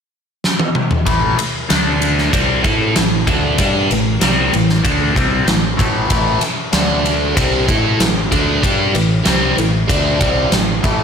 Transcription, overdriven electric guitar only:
1.06 A2 E3 A3
1.38 muted overdriven electric guitar stroke
1.69 D3 A3 D4
2.32 C3 G3 C4
2.63 A3 E4 A4
2.96 A2 E3
3.27 D3 A3 D4
3.59 G3 D4 G4
3.90 A2 E3
4.21 C3 G3 C4
4.52 A2 E3
4.84 D3 A3 D4
5.15 C3 G3 C4
5.46 A2 E3
5.77 A2 E3 A3
6.09 A2 E3 A3
6.41 muted overdriven electric guitar stroke
6.72 D3 A3 D4
7.35 C3 G3 C4
7.67 A3 E4 A4
7.99 A2 E3
8.31 D3 A3 D4
8.62 G3 D4 G4
8.94 A2 E3
9.25 C3 G3 C4
9.57 A2 E3
9.88 D3 A3 D4
10.20 C3 G3 C4
10.52 A2 E3
10.82 A2 E3 A3

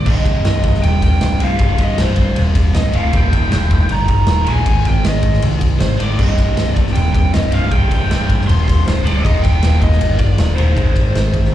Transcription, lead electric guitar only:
0.06 D#5
0.83 G5
1.04 G5
1.44 F5
1.81 D#5
2.01 C5
2.75 D#5
2.95 F5
3.16 G5
3.92 A#5
4.11 A#5
4.48 G#5
4.87 G5
5.05 D#5
5.80 C5
6.00 D5
6.17 D#5
6.72 D5
6.93 G5
7.14 G5
7.34 D#5
7.53 F5
7.71 G5
8.47 C6
8.65 C6
8.85 C5
9.05 D5
9.22 D#5
9.43 G5
9.80 D#5
10.19 D5
10.55 C5

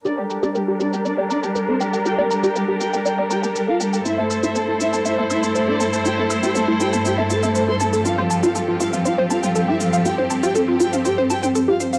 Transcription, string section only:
0.05 G3 D4 A4 A#4
4.05 G2 A3 E4 C5
8.05 F3 C4 G4

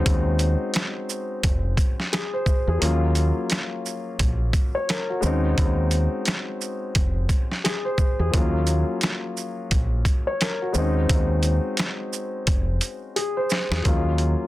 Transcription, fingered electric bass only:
0.06 D#2
1.44 F1
2.68 E2
2.82 D#2
4.20 A#1
5.23 D#2
5.58 D#2
6.96 F1
8.19 E2
8.34 D#2
9.72 A#1
10.75 D#2
11.10 D#2
12.48 F1
13.71 E2
13.85 D#2

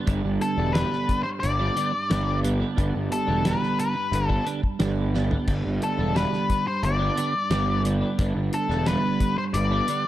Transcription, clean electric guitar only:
0.06 G2 D3 G3 B3 D4
0.58 G3 B3 D4
0.74 G2 D3 G3 B3 D4
1.26 muted clean electric guitar stroke
1.59 G3 B3 D4
1.76 D3 G3 B3 D4
1.93 muted clean electric guitar stroke
2.10 G2 D3 G3 B3 D4
2.43 D3 G3 B3 D4
2.60 G3 B3 D4
2.76 G2 D3 G3 B3 D4
3.27 G3 B3 D4
3.44 G2 D3 G3 B3 D4
3.95 muted clean electric guitar stroke
4.29 G3 B3 D4
4.45 D3 G3 B3 D4
4.62 muted clean electric guitar stroke
4.79 G2 D3 G3 B3 D4
5.14 D3 G3 B3 D4
5.30 G3 B3 D4
5.47 G2 D3 G3 B3 D4
5.98 G3 B3 D4
6.14 G2 D3 G3 B3 D4
6.66 muted clean electric guitar stroke
6.99 G3 B3 D4
7.17 D3 G3 B3 D4
7.34 muted clean electric guitar stroke
7.50 G2 D3 G3 B3 D4
7.85 D3 G3 B3 D4
8.01 G3 B3 D4
8.18 G2 D3 G3 B3 D4
8.69 G3 B3 D4
8.86 G2 D3 G3 B3 D4
9.37 muted clean electric guitar stroke
9.71 G3 B3 D4
9.88 D3 G3 B3 D4

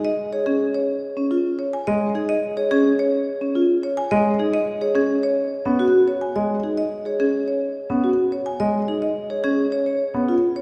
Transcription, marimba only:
0.05 D#5
0.33 C#5
0.46 G#4
0.75 C#5
1.59 C#5
1.73 G#5
1.87 D#5
2.15 G#4
2.29 D#5
2.57 C#5
2.71 G#4
2.99 C#5
3.83 C#5
3.97 G#5
4.11 D#5
4.40 G#4
4.54 D#5
4.82 C#5
4.95 G#4
5.23 C#5
6.08 C#5
6.21 G#5
6.36 D#5
6.64 G#4
6.77 D#5
7.06 C#5
7.20 G#4
7.48 C#5
8.32 C#5
8.46 G#5
8.60 D#5
8.88 G#4
9.02 D#5
9.30 C#5
9.44 G#4
9.72 C#5
10.56 C#5

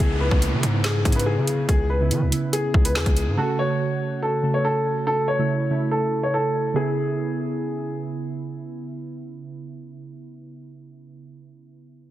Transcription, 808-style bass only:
0.00 C#2
0.31 C#2
0.53 C#3
0.63 G#2
1.05 G#2
1.37 C#3
1.69 C#2
2.11 E3
2.22 C#2
2.74 C#2
2.95 E2
3.06 C#2
3.27 G#2

